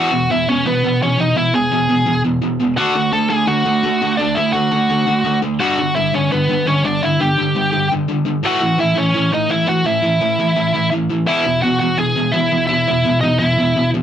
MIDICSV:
0, 0, Header, 1, 3, 480
1, 0, Start_track
1, 0, Tempo, 354191
1, 1844, Time_signature, 4, 2, 24, 8
1, 19009, End_track
2, 0, Start_track
2, 0, Title_t, "Lead electric guitar"
2, 0, Program_c, 0, 29
2, 0, Note_on_c, 0, 66, 72
2, 0, Note_on_c, 0, 78, 85
2, 382, Note_off_c, 0, 66, 0
2, 419, Note_off_c, 0, 78, 0
2, 425, Note_on_c, 0, 76, 90
2, 440, Note_on_c, 0, 64, 71
2, 648, Note_off_c, 0, 64, 0
2, 656, Note_off_c, 0, 76, 0
2, 656, Note_on_c, 0, 73, 81
2, 662, Note_on_c, 0, 61, 61
2, 878, Note_off_c, 0, 61, 0
2, 899, Note_off_c, 0, 73, 0
2, 907, Note_on_c, 0, 71, 86
2, 915, Note_on_c, 0, 59, 65
2, 1343, Note_off_c, 0, 71, 0
2, 1347, Note_off_c, 0, 59, 0
2, 1391, Note_on_c, 0, 73, 84
2, 1400, Note_on_c, 0, 61, 64
2, 1607, Note_off_c, 0, 61, 0
2, 1624, Note_on_c, 0, 63, 76
2, 1625, Note_off_c, 0, 73, 0
2, 1630, Note_on_c, 0, 75, 76
2, 1840, Note_off_c, 0, 63, 0
2, 1851, Note_off_c, 0, 75, 0
2, 1851, Note_on_c, 0, 76, 107
2, 1855, Note_on_c, 0, 64, 63
2, 2071, Note_off_c, 0, 64, 0
2, 2088, Note_off_c, 0, 76, 0
2, 2096, Note_on_c, 0, 68, 77
2, 2103, Note_on_c, 0, 80, 89
2, 2994, Note_off_c, 0, 68, 0
2, 2994, Note_off_c, 0, 80, 0
2, 3755, Note_on_c, 0, 78, 100
2, 3771, Note_on_c, 0, 66, 84
2, 4202, Note_off_c, 0, 78, 0
2, 4211, Note_off_c, 0, 66, 0
2, 4239, Note_on_c, 0, 81, 103
2, 4253, Note_on_c, 0, 69, 85
2, 4465, Note_off_c, 0, 81, 0
2, 4469, Note_off_c, 0, 69, 0
2, 4471, Note_on_c, 0, 80, 85
2, 4479, Note_on_c, 0, 68, 67
2, 4696, Note_off_c, 0, 80, 0
2, 4701, Note_off_c, 0, 68, 0
2, 4711, Note_on_c, 0, 66, 78
2, 4712, Note_on_c, 0, 78, 92
2, 5619, Note_off_c, 0, 66, 0
2, 5655, Note_on_c, 0, 74, 99
2, 5667, Note_on_c, 0, 62, 73
2, 5700, Note_off_c, 0, 78, 0
2, 5894, Note_off_c, 0, 62, 0
2, 5894, Note_on_c, 0, 76, 86
2, 5903, Note_on_c, 0, 64, 57
2, 5912, Note_off_c, 0, 74, 0
2, 6128, Note_off_c, 0, 76, 0
2, 6129, Note_off_c, 0, 64, 0
2, 6134, Note_on_c, 0, 78, 90
2, 6137, Note_on_c, 0, 66, 75
2, 7288, Note_off_c, 0, 78, 0
2, 7291, Note_off_c, 0, 66, 0
2, 7589, Note_on_c, 0, 66, 71
2, 7600, Note_on_c, 0, 78, 84
2, 8038, Note_off_c, 0, 66, 0
2, 8063, Note_on_c, 0, 64, 67
2, 8066, Note_off_c, 0, 78, 0
2, 8071, Note_on_c, 0, 76, 94
2, 8291, Note_off_c, 0, 64, 0
2, 8319, Note_off_c, 0, 76, 0
2, 8324, Note_on_c, 0, 61, 58
2, 8330, Note_on_c, 0, 73, 65
2, 8543, Note_off_c, 0, 61, 0
2, 8559, Note_off_c, 0, 73, 0
2, 8565, Note_on_c, 0, 71, 78
2, 8571, Note_on_c, 0, 59, 53
2, 9007, Note_off_c, 0, 59, 0
2, 9040, Note_on_c, 0, 61, 60
2, 9054, Note_off_c, 0, 71, 0
2, 9060, Note_on_c, 0, 73, 76
2, 9260, Note_off_c, 0, 61, 0
2, 9275, Note_on_c, 0, 62, 69
2, 9293, Note_off_c, 0, 73, 0
2, 9293, Note_on_c, 0, 74, 84
2, 9497, Note_off_c, 0, 62, 0
2, 9524, Note_on_c, 0, 64, 70
2, 9543, Note_off_c, 0, 74, 0
2, 9543, Note_on_c, 0, 76, 92
2, 9742, Note_off_c, 0, 64, 0
2, 9769, Note_on_c, 0, 67, 70
2, 9783, Note_off_c, 0, 76, 0
2, 9783, Note_on_c, 0, 79, 86
2, 10667, Note_off_c, 0, 67, 0
2, 10728, Note_off_c, 0, 79, 0
2, 11459, Note_on_c, 0, 66, 84
2, 11472, Note_on_c, 0, 78, 107
2, 11894, Note_off_c, 0, 66, 0
2, 11922, Note_off_c, 0, 78, 0
2, 11927, Note_on_c, 0, 76, 97
2, 11932, Note_on_c, 0, 64, 62
2, 12144, Note_off_c, 0, 64, 0
2, 12157, Note_on_c, 0, 61, 72
2, 12169, Note_off_c, 0, 76, 0
2, 12171, Note_on_c, 0, 73, 85
2, 12602, Note_off_c, 0, 61, 0
2, 12610, Note_off_c, 0, 73, 0
2, 12648, Note_on_c, 0, 63, 61
2, 12660, Note_on_c, 0, 75, 76
2, 12867, Note_off_c, 0, 63, 0
2, 12880, Note_off_c, 0, 75, 0
2, 12880, Note_on_c, 0, 76, 81
2, 12892, Note_on_c, 0, 64, 65
2, 13107, Note_off_c, 0, 64, 0
2, 13117, Note_off_c, 0, 76, 0
2, 13126, Note_on_c, 0, 78, 96
2, 13133, Note_on_c, 0, 66, 76
2, 13348, Note_off_c, 0, 66, 0
2, 13362, Note_off_c, 0, 78, 0
2, 13362, Note_on_c, 0, 76, 90
2, 13374, Note_on_c, 0, 64, 65
2, 14750, Note_off_c, 0, 64, 0
2, 14802, Note_off_c, 0, 76, 0
2, 15276, Note_on_c, 0, 76, 96
2, 15288, Note_on_c, 0, 64, 80
2, 15730, Note_off_c, 0, 64, 0
2, 15745, Note_off_c, 0, 76, 0
2, 15750, Note_on_c, 0, 78, 96
2, 15763, Note_on_c, 0, 66, 80
2, 15971, Note_off_c, 0, 78, 0
2, 15984, Note_off_c, 0, 66, 0
2, 15987, Note_on_c, 0, 78, 85
2, 16005, Note_on_c, 0, 66, 69
2, 16226, Note_off_c, 0, 66, 0
2, 16233, Note_off_c, 0, 78, 0
2, 16233, Note_on_c, 0, 80, 108
2, 16256, Note_on_c, 0, 68, 76
2, 16692, Note_on_c, 0, 76, 88
2, 16696, Note_off_c, 0, 68, 0
2, 16713, Note_on_c, 0, 64, 67
2, 16732, Note_off_c, 0, 80, 0
2, 17153, Note_off_c, 0, 76, 0
2, 17164, Note_off_c, 0, 64, 0
2, 17171, Note_on_c, 0, 76, 93
2, 17195, Note_on_c, 0, 64, 76
2, 17870, Note_off_c, 0, 64, 0
2, 17894, Note_off_c, 0, 76, 0
2, 17900, Note_on_c, 0, 75, 81
2, 17934, Note_on_c, 0, 63, 64
2, 18141, Note_off_c, 0, 75, 0
2, 18146, Note_on_c, 0, 76, 100
2, 18153, Note_off_c, 0, 63, 0
2, 18188, Note_on_c, 0, 64, 73
2, 18827, Note_off_c, 0, 76, 0
2, 18849, Note_off_c, 0, 64, 0
2, 19009, End_track
3, 0, Start_track
3, 0, Title_t, "Distorted electric guitar"
3, 0, Program_c, 1, 30
3, 0, Note_on_c, 1, 40, 75
3, 0, Note_on_c, 1, 47, 78
3, 0, Note_on_c, 1, 52, 83
3, 145, Note_off_c, 1, 40, 0
3, 149, Note_off_c, 1, 47, 0
3, 160, Note_off_c, 1, 52, 0
3, 161, Note_on_c, 1, 40, 74
3, 165, Note_on_c, 1, 47, 82
3, 381, Note_off_c, 1, 40, 0
3, 383, Note_off_c, 1, 47, 0
3, 409, Note_on_c, 1, 40, 79
3, 416, Note_on_c, 1, 47, 88
3, 625, Note_off_c, 1, 40, 0
3, 628, Note_off_c, 1, 47, 0
3, 654, Note_on_c, 1, 40, 64
3, 661, Note_on_c, 1, 47, 79
3, 867, Note_off_c, 1, 40, 0
3, 870, Note_off_c, 1, 47, 0
3, 894, Note_on_c, 1, 40, 74
3, 898, Note_on_c, 1, 47, 85
3, 1106, Note_off_c, 1, 40, 0
3, 1108, Note_off_c, 1, 47, 0
3, 1140, Note_on_c, 1, 40, 69
3, 1144, Note_on_c, 1, 47, 74
3, 1349, Note_off_c, 1, 40, 0
3, 1351, Note_off_c, 1, 47, 0
3, 1384, Note_on_c, 1, 40, 77
3, 1393, Note_on_c, 1, 47, 87
3, 1587, Note_off_c, 1, 40, 0
3, 1595, Note_off_c, 1, 47, 0
3, 1603, Note_on_c, 1, 40, 65
3, 1612, Note_on_c, 1, 47, 67
3, 1820, Note_off_c, 1, 40, 0
3, 1824, Note_off_c, 1, 47, 0
3, 1838, Note_on_c, 1, 40, 65
3, 1844, Note_on_c, 1, 47, 81
3, 2057, Note_off_c, 1, 40, 0
3, 2060, Note_off_c, 1, 47, 0
3, 2082, Note_on_c, 1, 40, 65
3, 2083, Note_on_c, 1, 47, 82
3, 2299, Note_off_c, 1, 40, 0
3, 2299, Note_off_c, 1, 47, 0
3, 2323, Note_on_c, 1, 40, 77
3, 2328, Note_on_c, 1, 47, 85
3, 2539, Note_off_c, 1, 40, 0
3, 2541, Note_off_c, 1, 47, 0
3, 2562, Note_on_c, 1, 40, 65
3, 2573, Note_on_c, 1, 47, 82
3, 2778, Note_off_c, 1, 40, 0
3, 2783, Note_off_c, 1, 47, 0
3, 2794, Note_on_c, 1, 40, 85
3, 2798, Note_on_c, 1, 47, 88
3, 3014, Note_off_c, 1, 40, 0
3, 3015, Note_off_c, 1, 47, 0
3, 3038, Note_on_c, 1, 40, 77
3, 3044, Note_on_c, 1, 47, 79
3, 3255, Note_off_c, 1, 40, 0
3, 3258, Note_off_c, 1, 47, 0
3, 3276, Note_on_c, 1, 40, 81
3, 3280, Note_on_c, 1, 47, 95
3, 3494, Note_off_c, 1, 40, 0
3, 3496, Note_off_c, 1, 47, 0
3, 3522, Note_on_c, 1, 40, 71
3, 3528, Note_on_c, 1, 47, 80
3, 3736, Note_off_c, 1, 40, 0
3, 3740, Note_off_c, 1, 47, 0
3, 3755, Note_on_c, 1, 50, 85
3, 3769, Note_on_c, 1, 57, 92
3, 3776, Note_on_c, 1, 62, 89
3, 3982, Note_off_c, 1, 50, 0
3, 3989, Note_off_c, 1, 57, 0
3, 3993, Note_off_c, 1, 62, 0
3, 4003, Note_on_c, 1, 50, 73
3, 4005, Note_on_c, 1, 57, 76
3, 4216, Note_off_c, 1, 50, 0
3, 4217, Note_off_c, 1, 57, 0
3, 4235, Note_on_c, 1, 50, 88
3, 4242, Note_on_c, 1, 57, 90
3, 4452, Note_off_c, 1, 50, 0
3, 4455, Note_off_c, 1, 57, 0
3, 4470, Note_on_c, 1, 50, 70
3, 4472, Note_on_c, 1, 57, 82
3, 4690, Note_off_c, 1, 50, 0
3, 4690, Note_off_c, 1, 57, 0
3, 4703, Note_on_c, 1, 50, 76
3, 4708, Note_on_c, 1, 57, 90
3, 4926, Note_off_c, 1, 50, 0
3, 4928, Note_off_c, 1, 57, 0
3, 4948, Note_on_c, 1, 50, 72
3, 4951, Note_on_c, 1, 57, 82
3, 5168, Note_off_c, 1, 50, 0
3, 5170, Note_off_c, 1, 57, 0
3, 5191, Note_on_c, 1, 50, 75
3, 5194, Note_on_c, 1, 57, 94
3, 5409, Note_off_c, 1, 50, 0
3, 5411, Note_off_c, 1, 57, 0
3, 5443, Note_on_c, 1, 50, 59
3, 5447, Note_on_c, 1, 57, 76
3, 5655, Note_off_c, 1, 50, 0
3, 5657, Note_off_c, 1, 57, 0
3, 5678, Note_on_c, 1, 50, 77
3, 5678, Note_on_c, 1, 57, 76
3, 5893, Note_off_c, 1, 50, 0
3, 5893, Note_off_c, 1, 57, 0
3, 5912, Note_on_c, 1, 50, 69
3, 5915, Note_on_c, 1, 57, 72
3, 6126, Note_off_c, 1, 50, 0
3, 6131, Note_off_c, 1, 57, 0
3, 6143, Note_on_c, 1, 50, 82
3, 6149, Note_on_c, 1, 57, 91
3, 6364, Note_off_c, 1, 50, 0
3, 6368, Note_off_c, 1, 57, 0
3, 6387, Note_on_c, 1, 50, 64
3, 6389, Note_on_c, 1, 57, 78
3, 6607, Note_off_c, 1, 50, 0
3, 6607, Note_off_c, 1, 57, 0
3, 6630, Note_on_c, 1, 50, 74
3, 6634, Note_on_c, 1, 57, 86
3, 6848, Note_off_c, 1, 50, 0
3, 6850, Note_off_c, 1, 57, 0
3, 6864, Note_on_c, 1, 50, 77
3, 6868, Note_on_c, 1, 57, 80
3, 7085, Note_off_c, 1, 50, 0
3, 7087, Note_off_c, 1, 57, 0
3, 7104, Note_on_c, 1, 50, 83
3, 7112, Note_on_c, 1, 57, 83
3, 7325, Note_off_c, 1, 50, 0
3, 7329, Note_off_c, 1, 57, 0
3, 7342, Note_on_c, 1, 50, 68
3, 7348, Note_on_c, 1, 57, 74
3, 7564, Note_off_c, 1, 50, 0
3, 7567, Note_off_c, 1, 57, 0
3, 7583, Note_on_c, 1, 43, 86
3, 7593, Note_on_c, 1, 50, 85
3, 7602, Note_on_c, 1, 55, 92
3, 7814, Note_off_c, 1, 43, 0
3, 7819, Note_off_c, 1, 50, 0
3, 7823, Note_off_c, 1, 55, 0
3, 7840, Note_on_c, 1, 43, 68
3, 7841, Note_on_c, 1, 50, 80
3, 8053, Note_off_c, 1, 43, 0
3, 8053, Note_off_c, 1, 50, 0
3, 8074, Note_on_c, 1, 43, 77
3, 8080, Note_on_c, 1, 50, 83
3, 8289, Note_off_c, 1, 43, 0
3, 8293, Note_off_c, 1, 50, 0
3, 8313, Note_on_c, 1, 43, 70
3, 8318, Note_on_c, 1, 50, 77
3, 8529, Note_off_c, 1, 43, 0
3, 8531, Note_off_c, 1, 50, 0
3, 8553, Note_on_c, 1, 43, 81
3, 8562, Note_on_c, 1, 50, 85
3, 8769, Note_off_c, 1, 43, 0
3, 8774, Note_off_c, 1, 50, 0
3, 8800, Note_on_c, 1, 43, 70
3, 8803, Note_on_c, 1, 50, 80
3, 9012, Note_off_c, 1, 43, 0
3, 9014, Note_off_c, 1, 50, 0
3, 9032, Note_on_c, 1, 43, 77
3, 9039, Note_on_c, 1, 50, 84
3, 9249, Note_off_c, 1, 43, 0
3, 9252, Note_off_c, 1, 50, 0
3, 9279, Note_on_c, 1, 43, 59
3, 9284, Note_on_c, 1, 50, 68
3, 9492, Note_off_c, 1, 43, 0
3, 9495, Note_off_c, 1, 50, 0
3, 9523, Note_on_c, 1, 43, 73
3, 9528, Note_on_c, 1, 50, 82
3, 9734, Note_off_c, 1, 43, 0
3, 9737, Note_off_c, 1, 50, 0
3, 9758, Note_on_c, 1, 43, 76
3, 9762, Note_on_c, 1, 50, 75
3, 9971, Note_off_c, 1, 43, 0
3, 9973, Note_off_c, 1, 50, 0
3, 9994, Note_on_c, 1, 43, 75
3, 10004, Note_on_c, 1, 50, 92
3, 10210, Note_off_c, 1, 43, 0
3, 10214, Note_off_c, 1, 50, 0
3, 10237, Note_on_c, 1, 43, 70
3, 10244, Note_on_c, 1, 50, 69
3, 10451, Note_off_c, 1, 43, 0
3, 10455, Note_off_c, 1, 50, 0
3, 10467, Note_on_c, 1, 43, 78
3, 10474, Note_on_c, 1, 50, 84
3, 10686, Note_off_c, 1, 43, 0
3, 10690, Note_off_c, 1, 50, 0
3, 10728, Note_on_c, 1, 43, 72
3, 10729, Note_on_c, 1, 50, 78
3, 10936, Note_off_c, 1, 43, 0
3, 10937, Note_off_c, 1, 50, 0
3, 10951, Note_on_c, 1, 43, 82
3, 10956, Note_on_c, 1, 50, 96
3, 11165, Note_off_c, 1, 43, 0
3, 11171, Note_off_c, 1, 50, 0
3, 11181, Note_on_c, 1, 43, 69
3, 11190, Note_on_c, 1, 50, 75
3, 11404, Note_off_c, 1, 43, 0
3, 11408, Note_off_c, 1, 50, 0
3, 11423, Note_on_c, 1, 45, 84
3, 11435, Note_on_c, 1, 52, 79
3, 11447, Note_on_c, 1, 57, 92
3, 11647, Note_off_c, 1, 45, 0
3, 11650, Note_off_c, 1, 52, 0
3, 11663, Note_on_c, 1, 45, 70
3, 11666, Note_off_c, 1, 57, 0
3, 11666, Note_on_c, 1, 52, 80
3, 11884, Note_off_c, 1, 45, 0
3, 11886, Note_off_c, 1, 52, 0
3, 11902, Note_on_c, 1, 45, 86
3, 11911, Note_on_c, 1, 52, 92
3, 12114, Note_off_c, 1, 45, 0
3, 12123, Note_off_c, 1, 52, 0
3, 12130, Note_on_c, 1, 45, 69
3, 12139, Note_on_c, 1, 52, 80
3, 12358, Note_off_c, 1, 45, 0
3, 12363, Note_off_c, 1, 52, 0
3, 12392, Note_on_c, 1, 45, 86
3, 12396, Note_on_c, 1, 52, 93
3, 12609, Note_off_c, 1, 45, 0
3, 12611, Note_off_c, 1, 52, 0
3, 12628, Note_on_c, 1, 45, 71
3, 12638, Note_on_c, 1, 52, 83
3, 12847, Note_off_c, 1, 45, 0
3, 12848, Note_off_c, 1, 52, 0
3, 12864, Note_on_c, 1, 45, 83
3, 12865, Note_on_c, 1, 52, 89
3, 13077, Note_off_c, 1, 45, 0
3, 13086, Note_off_c, 1, 52, 0
3, 13094, Note_on_c, 1, 45, 62
3, 13100, Note_on_c, 1, 52, 73
3, 13320, Note_off_c, 1, 45, 0
3, 13323, Note_off_c, 1, 52, 0
3, 13343, Note_on_c, 1, 45, 71
3, 13354, Note_on_c, 1, 52, 77
3, 13565, Note_off_c, 1, 45, 0
3, 13571, Note_off_c, 1, 52, 0
3, 13582, Note_on_c, 1, 45, 71
3, 13586, Note_on_c, 1, 52, 80
3, 13805, Note_off_c, 1, 45, 0
3, 13807, Note_off_c, 1, 52, 0
3, 13833, Note_on_c, 1, 45, 80
3, 13835, Note_on_c, 1, 52, 91
3, 14050, Note_off_c, 1, 45, 0
3, 14051, Note_off_c, 1, 52, 0
3, 14078, Note_on_c, 1, 45, 71
3, 14084, Note_on_c, 1, 52, 76
3, 14293, Note_off_c, 1, 45, 0
3, 14296, Note_off_c, 1, 52, 0
3, 14309, Note_on_c, 1, 45, 79
3, 14311, Note_on_c, 1, 52, 85
3, 14529, Note_off_c, 1, 45, 0
3, 14530, Note_off_c, 1, 52, 0
3, 14556, Note_on_c, 1, 45, 74
3, 14562, Note_on_c, 1, 52, 78
3, 14773, Note_off_c, 1, 45, 0
3, 14775, Note_off_c, 1, 52, 0
3, 14793, Note_on_c, 1, 45, 76
3, 14798, Note_on_c, 1, 52, 80
3, 15011, Note_off_c, 1, 45, 0
3, 15013, Note_off_c, 1, 52, 0
3, 15036, Note_on_c, 1, 45, 61
3, 15044, Note_on_c, 1, 52, 63
3, 15253, Note_off_c, 1, 45, 0
3, 15257, Note_off_c, 1, 52, 0
3, 15264, Note_on_c, 1, 40, 78
3, 15273, Note_on_c, 1, 47, 86
3, 15284, Note_on_c, 1, 52, 89
3, 15497, Note_off_c, 1, 40, 0
3, 15501, Note_off_c, 1, 47, 0
3, 15507, Note_off_c, 1, 52, 0
3, 15512, Note_on_c, 1, 40, 76
3, 15520, Note_on_c, 1, 47, 76
3, 15731, Note_off_c, 1, 40, 0
3, 15735, Note_off_c, 1, 47, 0
3, 15762, Note_on_c, 1, 40, 78
3, 15769, Note_on_c, 1, 47, 93
3, 15977, Note_off_c, 1, 40, 0
3, 15980, Note_off_c, 1, 47, 0
3, 15998, Note_on_c, 1, 40, 68
3, 16002, Note_on_c, 1, 47, 73
3, 16210, Note_off_c, 1, 40, 0
3, 16212, Note_off_c, 1, 47, 0
3, 16227, Note_on_c, 1, 40, 78
3, 16229, Note_on_c, 1, 47, 91
3, 16450, Note_off_c, 1, 40, 0
3, 16451, Note_off_c, 1, 47, 0
3, 16478, Note_on_c, 1, 40, 77
3, 16483, Note_on_c, 1, 47, 83
3, 16696, Note_off_c, 1, 40, 0
3, 16698, Note_off_c, 1, 47, 0
3, 16717, Note_on_c, 1, 40, 77
3, 16720, Note_on_c, 1, 47, 89
3, 16935, Note_off_c, 1, 40, 0
3, 16937, Note_off_c, 1, 47, 0
3, 16959, Note_on_c, 1, 40, 63
3, 16962, Note_on_c, 1, 47, 69
3, 17177, Note_off_c, 1, 40, 0
3, 17178, Note_off_c, 1, 47, 0
3, 17198, Note_on_c, 1, 40, 71
3, 17206, Note_on_c, 1, 47, 83
3, 17417, Note_off_c, 1, 40, 0
3, 17420, Note_off_c, 1, 47, 0
3, 17450, Note_on_c, 1, 40, 73
3, 17452, Note_on_c, 1, 47, 79
3, 17663, Note_off_c, 1, 40, 0
3, 17664, Note_off_c, 1, 47, 0
3, 17687, Note_on_c, 1, 40, 78
3, 17693, Note_on_c, 1, 47, 84
3, 17902, Note_off_c, 1, 40, 0
3, 17905, Note_off_c, 1, 47, 0
3, 17928, Note_on_c, 1, 40, 68
3, 17931, Note_on_c, 1, 47, 68
3, 18142, Note_off_c, 1, 40, 0
3, 18144, Note_off_c, 1, 47, 0
3, 18158, Note_on_c, 1, 40, 71
3, 18165, Note_on_c, 1, 47, 88
3, 18378, Note_off_c, 1, 40, 0
3, 18382, Note_off_c, 1, 47, 0
3, 18402, Note_on_c, 1, 40, 74
3, 18408, Note_on_c, 1, 47, 94
3, 18620, Note_off_c, 1, 40, 0
3, 18623, Note_off_c, 1, 47, 0
3, 18646, Note_on_c, 1, 40, 73
3, 18650, Note_on_c, 1, 47, 84
3, 18863, Note_off_c, 1, 40, 0
3, 18865, Note_off_c, 1, 47, 0
3, 18893, Note_on_c, 1, 40, 60
3, 18896, Note_on_c, 1, 47, 82
3, 19009, Note_off_c, 1, 40, 0
3, 19009, Note_off_c, 1, 47, 0
3, 19009, End_track
0, 0, End_of_file